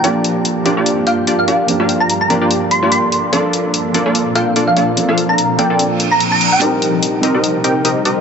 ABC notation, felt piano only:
X:1
M:4/4
L:1/8
Q:"Swing 16ths" 1/4=146
K:Bb
V:1 name="Felt piano"
[F,B,DG]3 [F,B,DG]4- [F,B,DG] | [F,B,DG]3 [F,B,DG]4- [F,B,DG] | [F,B,DA]3 [F,B,DA]4- [F,B,DA] | [F,B,DA]3 [F,B,DA]4- [F,B,DA] |
[G,CEB]3 [G,CEB]4- [G,CEB] |]